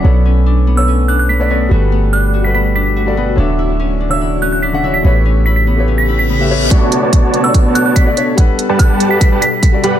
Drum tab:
HH |--------|--------|--------|--------|
BD |--------|--------|--------|--------|

HH |xxxxxxxx|xxxxxxxx|
BD |o-o-o-o-|o-o-o-o-|